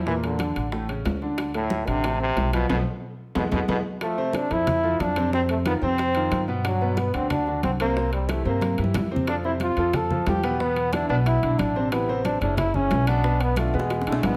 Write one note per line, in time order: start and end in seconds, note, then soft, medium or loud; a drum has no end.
0.00 0.50 E2 medium
0.06 0.33 A#2 medium
0.06 0.14 E3 medium
0.06 0.34 A#3 medium
0.06 high bongo medium
0.06 high conga soft
0.23 0.69 D3 medium
0.23 high bongo soft
0.23 high conga soft
0.23 high timbale medium
0.39 0.67 D3 medium
0.39 0.67 D4 medium
0.39 high bongo medium
0.39 high conga medium
0.39 high timbale medium
0.39 low timbale medium
0.55 1.02 A1 medium
0.55 high bongo soft
0.55 high conga soft
0.55 high timbale medium
0.72 0.86 A2 medium
0.72 0.86 A3 medium
0.72 high bongo medium
0.72 high conga soft
0.89 1.16 C#3 medium
0.89 1.16 C#4 medium
0.89 high conga soft
0.89 high timbale medium
1.05 1.82 D2 medium
1.05 high bongo soft
1.05 low bongo medium
1.05 high conga soft
1.05 high timbale medium
1.05 low timbale medium
1.21 1.49 D3 medium
1.21 1.49 D4 medium
1.21 high bongo soft
1.21 high conga soft
1.38 high bongo medium
1.38 high conga soft
1.38 high timbale medium
1.54 1.89 A2 loud
1.54 1.82 A3 medium
1.54 1.82 A4 medium
1.54 high bongo soft
1.54 high conga soft
1.54 high timbale medium
1.70 high bongo medium
1.70 high conga loud
1.70 low timbale medium
1.87 2.33 A1 medium
1.87 2.20 C3 loud
1.87 2.01 D3 medium
1.87 2.01 D4 medium
1.87 high bongo soft
1.87 high conga soft
1.87 high timbale medium
2.03 2.17 A3 medium
2.03 2.18 A4 medium
2.03 high bongo medium
2.03 high conga soft
2.03 high timbale medium
2.20 2.47 C3 medium
2.20 2.51 C3 loud
2.20 2.47 C4 medium
2.20 high conga soft
2.37 2.67 B1 medium
2.37 high bongo soft
2.37 low bongo medium
2.37 high conga soft
2.37 high timbale medium
2.37 low timbale medium
2.53 2.69 B2 loud
2.53 2.67 F3 medium
2.53 2.67 F4 medium
2.53 high bongo soft
2.53 high conga medium
2.53 high timbale medium
2.69 2.82 B1 medium
2.69 2.78 B2 medium
2.69 2.80 F3 loud
2.69 2.80 A3 loud
2.69 2.80 B3 loud
2.69 low bongo loud
2.69 high conga loud
2.69 high timbale loud
3.35 3.48 E2 loud
3.35 3.44 B2 medium
3.35 3.46 E3 loud
3.35 3.46 G#3 loud
3.35 3.46 B3 loud
3.35 low bongo loud
3.35 high conga loud
3.35 high timbale loud
3.52 3.64 E2 loud
3.52 3.60 B2 loud
3.52 3.63 E3 medium
3.52 3.63 G#3 loud
3.52 3.63 B3 medium
3.52 low bongo medium
3.52 high conga loud
3.52 high timbale medium
3.68 3.81 E2 loud
3.68 3.77 B2 loud
3.68 3.79 E3 loud
3.68 3.79 G#3 loud
3.68 3.79 B3 loud
3.68 low bongo medium
3.68 high conga loud
3.68 high timbale loud
4.01 4.15 F3 medium
4.01 4.37 A3 medium
4.01 4.15 F4 medium
4.01 4.15 A4 medium
4.01 high bongo medium
4.01 high conga soft
4.01 high timbale medium
4.18 4.45 C3 medium
4.18 4.45 C4 medium
4.18 4.45 C5 medium
4.18 high bongo soft
4.18 high conga soft
4.33 4.53 D4 loud
4.33 high bongo medium
4.33 high conga loud
4.33 high timbale medium
4.50 4.96 F2 medium
4.50 4.78 F3 medium
4.50 4.78 E4 medium
4.50 5.02 E4 loud
4.50 4.78 A4 medium
4.50 high conga soft
4.50 high timbale medium
4.67 high bongo medium
4.67 high conga soft
4.67 low conga medium
4.67 high timbale loud
4.83 5.10 F3 medium
4.83 5.10 F4 medium
4.83 5.11 A4 medium
4.83 high bongo soft
4.83 high conga soft
5.00 5.76 F2 medium
5.00 5.33 D4 loud
5.00 high bongo medium
5.00 low bongo medium
5.00 high conga medium
5.00 high timbale medium
5.16 5.30 C3 medium
5.16 5.30 C4 medium
5.16 5.30 C5 medium
5.16 high bongo soft
5.16 high conga medium
5.16 high timbale medium
5.32 5.60 C3 medium
5.32 5.60 C4 medium
5.32 5.41 C4 loud
5.32 5.60 C5 medium
5.32 high bongo medium
5.32 high conga soft
5.49 5.57 A3 medium
5.49 high conga soft
5.49 high timbale medium
5.66 5.79 D#3 medium
5.66 5.74 B3 medium
5.66 5.79 D#4 medium
5.66 5.79 F4 medium
5.66 high bongo medium
5.66 high conga medium
5.66 high timbale medium
5.82 6.28 F2 medium
5.82 6.09 C3 medium
5.82 6.09 C4 medium
5.82 6.44 C4 loud
5.82 6.10 C5 medium
5.82 high bongo soft
5.82 high conga soft
5.98 high bongo medium
5.98 high conga soft
5.98 high timbale medium
6.15 6.42 D#3 medium
6.15 6.43 D#4 medium
6.15 6.43 F4 medium
6.15 high bongo soft
6.15 high conga soft
6.15 high timbale medium
6.31 7.08 G2 medium
6.31 high bongo medium
6.31 low bongo medium
6.31 high conga medium
6.31 high timbale medium
6.48 6.61 B2 medium
6.48 6.62 B3 medium
6.48 6.62 B4 medium
6.48 high bongo soft
6.64 6.78 D3 medium
6.64 7.00 F#3 medium
6.64 6.78 D4 medium
6.64 6.78 F#4 medium
6.64 high bongo medium
6.64 high conga soft
6.64 high timbale loud
6.81 7.08 B2 medium
6.81 7.08 B3 medium
6.81 7.08 B4 medium
6.81 high bongo soft
6.81 high conga soft
6.97 7.16 B3 medium
6.97 high bongo medium
6.97 high conga loud
6.97 high timbale medium
7.14 7.60 D2 medium
7.14 7.41 D3 medium
7.14 7.30 C4 loud
7.14 7.41 D4 medium
7.14 7.41 F#4 medium
7.14 high conga soft
7.14 high timbale medium
7.30 7.61 D4 medium
7.30 high bongo medium
7.30 high conga soft
7.30 low conga medium
7.30 high timbale medium
7.46 7.74 D3 medium
7.46 7.74 D4 medium
7.46 7.74 F#4 medium
7.46 high bongo soft
7.46 high conga soft
7.63 8.40 C2 medium
7.63 7.71 C4 medium
7.63 high bongo medium
7.63 low bongo medium
7.63 high conga medium
7.63 high timbale medium
7.80 7.93 C3 medium
7.80 8.11 A#3 loud
7.80 7.94 C4 medium
7.80 7.94 C5 medium
7.80 high bongo soft
7.80 high timbale loud
7.96 8.23 C3 medium
7.96 8.23 C4 medium
7.96 8.23 C5 medium
7.96 high bongo medium
7.96 high conga soft
8.12 8.31 G3 medium
8.12 high conga soft
8.12 high timbale medium
8.29 8.43 E3 medium
8.29 8.45 A3 medium
8.29 8.43 E4 medium
8.29 8.43 G4 medium
8.29 high bongo medium
8.29 high conga medium
8.29 high timbale medium
8.45 8.76 G2 medium
8.45 8.72 C3 medium
8.45 8.82 A#3 medium
8.45 8.73 C4 medium
8.45 8.73 C5 medium
8.45 high bongo soft
8.45 high conga soft
8.61 high bongo medium
8.61 high conga loud
8.61 high timbale medium
8.78 8.94 G2 medium
8.78 9.05 E3 medium
8.78 9.06 E4 medium
8.78 9.06 G4 medium
8.78 high bongo soft
8.78 high timbale medium
8.84 high conga loud
8.94 9.72 F2 medium
8.94 high bongo medium
8.94 low bongo medium
8.94 low conga loud
8.94 high timbale medium
8.94 low timbale medium
9.11 9.25 C3 medium
9.11 9.25 C4 medium
9.11 9.25 C5 medium
9.11 high bongo soft
9.16 low conga medium
9.27 9.41 F3 medium
9.27 9.36 D4 medium
9.27 9.41 F4 medium
9.27 9.42 A4 medium
9.27 high bongo medium
9.27 high timbale medium
9.43 9.71 C3 medium
9.43 9.72 C4 medium
9.43 9.52 E4 medium
9.43 9.72 C5 medium
9.43 high bongo soft
9.43 high conga soft
9.60 9.96 F4 loud
9.60 high bongo medium
9.60 high conga medium
9.60 high timbale medium
9.77 10.23 F2 medium
9.77 10.05 F3 medium
9.77 10.05 F4 medium
9.77 10.05 A4 medium
9.77 high conga soft
9.77 high timbale medium
9.93 10.28 A4 loud
9.93 high bongo medium
9.93 high conga soft
9.93 low conga medium
9.93 high timbale medium
10.10 10.38 F3 medium
10.10 10.38 F4 medium
10.10 10.38 A4 medium
10.10 high bongo soft
10.10 high conga soft
10.10 low conga medium
10.26 11.04 E2 medium
10.26 10.62 G4 loud
10.26 high bongo medium
10.26 low bongo medium
10.26 high conga medium
10.26 high timbale medium
10.26 low timbale medium
10.43 10.57 B2 medium
10.43 10.57 B3 medium
10.43 10.57 B4 medium
10.43 high bongo soft
10.43 high timbale medium
10.60 10.87 B2 medium
10.60 10.87 B3 medium
10.60 10.94 B3 loud
10.60 10.87 B4 medium
10.60 high bongo medium
10.60 high conga soft
10.76 high conga soft
10.76 high timbale medium
10.93 11.06 D3 medium
10.93 11.06 D4 medium
10.93 11.09 D4 loud
10.93 11.07 E4 medium
10.93 high bongo medium
10.93 high conga medium
10.93 high timbale loud
11.09 11.40 B1 medium
11.09 11.36 B2 medium
11.09 11.37 B3 medium
11.09 11.17 D4 loud
11.09 11.37 B4 medium
11.09 high bongo soft
11.09 high conga soft
11.25 11.60 E4 loud
11.25 high bongo medium
11.25 high conga soft
11.25 high timbale medium
11.42 11.58 B1 medium
11.42 11.70 D3 medium
11.42 11.70 D4 medium
11.42 11.70 E4 medium
11.42 high bongo soft
11.42 high conga soft
11.42 high timbale medium
11.59 12.36 A1 medium
11.59 11.91 D4 loud
11.59 high bongo medium
11.59 low bongo medium
11.59 high conga medium
11.59 high timbale medium
11.76 11.89 C3 medium
11.76 11.89 C4 medium
11.76 11.90 C5 medium
11.76 high bongo soft
11.92 12.06 E3 medium
11.92 12.23 B3 medium
11.92 12.06 E4 medium
11.92 12.06 G4 medium
11.92 high bongo medium
11.92 high conga soft
11.92 high timbale loud
12.08 12.36 C3 medium
12.08 12.36 C4 medium
12.08 12.36 C5 medium
12.08 high bongo soft
12.08 high conga soft
12.25 12.40 D4 medium
12.25 high bongo medium
12.25 high conga loud
12.25 high timbale medium
12.41 12.87 F#1 loud
12.41 12.69 C#3 medium
12.41 12.69 C#4 medium
12.41 12.57 D4 medium
12.41 12.69 E4 medium
12.41 high conga soft
12.41 high timbale medium
12.57 12.76 E4 medium
12.57 high bongo medium
12.57 high conga soft
12.57 low conga medium
12.57 high timbale medium
12.74 13.02 C#3 medium
12.74 13.09 C#4 medium
12.74 13.02 C#4 medium
12.74 13.02 E4 medium
12.74 high bongo soft
12.74 high conga soft
12.74 low conga medium
12.90 13.68 B1 loud
12.90 high bongo medium
12.90 low bongo medium
12.90 high conga medium
12.90 high timbale medium
12.90 low timbale medium
13.07 13.21 B2 medium
13.07 13.21 B3 medium
13.07 13.43 D4 loud
13.07 13.22 B4 medium
13.07 high bongo soft
13.07 high timbale medium
13.24 13.51 B2 medium
13.24 13.51 B3 medium
13.24 13.52 B4 medium
13.24 high bongo medium
13.40 13.57 B3 medium
13.40 high conga soft
13.40 high timbale medium
13.56 13.71 D3 medium
13.56 13.76 A3 medium
13.56 13.71 D4 medium
13.56 13.71 F4 medium
13.56 high bongo medium
13.56 high conga loud
13.56 high timbale loud
13.73 14.04 E2 loud
13.73 14.01 B2 medium
13.73 14.37 G#3 medium
13.73 14.01 B3 medium
13.73 14.01 B4 medium
13.73 high conga soft
13.79 high bongo loud
13.90 high bongo medium
13.90 high conga soft
13.90 high timbale medium
14.02 low bongo medium
14.07 14.22 B1 medium
14.07 14.34 D3 medium
14.07 14.22 A3 loud
14.07 14.34 D4 medium
14.07 14.34 E4 medium
14.07 high conga soft
14.07 high timbale medium
14.12 low bongo loud
14.23 14.37 A1 loud
14.23 14.37 B3 loud
14.23 low bongo medium
14.23 high conga medium
14.23 high timbale loud
14.23 low timbale medium